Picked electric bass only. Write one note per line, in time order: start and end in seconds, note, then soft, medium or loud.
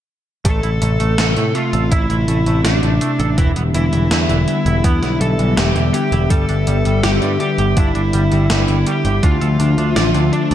0.45 0.60 A1 loud
0.64 0.78 A1 medium
0.82 0.96 A1 medium
1.00 1.15 A1 medium
1.18 1.33 A1 medium
1.37 1.51 A2 medium
1.73 1.88 A1 medium
1.92 2.06 A1 loud
2.10 2.24 A1 medium
2.28 2.43 A1 medium
2.46 2.61 A1 medium
2.65 2.79 A1 medium
2.83 2.98 A1 medium
3.20 3.34 A1 medium
3.38 3.52 E1 loud
3.56 3.71 E1 medium
3.75 3.89 E1 medium
3.93 4.07 E1 medium
4.11 4.26 E2 medium
4.29 4.44 E1 medium
4.66 4.80 E1 medium
4.84 4.99 E2 loud
5.03 5.17 B1 medium
5.21 5.35 B1 medium
5.39 5.54 B1 medium
5.57 5.72 E1 loud
5.76 5.90 E1 medium
6.12 6.27 E1 medium
6.30 6.45 G1 medium
6.49 6.63 G1 medium
6.67 6.82 G1 medium
6.85 7.00 G1 medium
7.04 7.18 G1 loud
7.22 7.37 G2 medium
7.58 7.73 G1 medium
7.77 7.91 G1 loud
7.95 8.10 G1 medium
8.14 8.28 G1 medium
8.32 8.46 G1 medium
8.50 8.65 G1 loud
8.69 8.83 G1 medium
9.05 9.20 G1 medium
9.23 9.38 D2 loud
9.42 9.56 D2 medium
9.60 9.74 D2 medium
9.78 9.93 D2 medium
9.96 10.11 A1 loud
10.15 10.29 D2 medium
10.51 10.55 D2 medium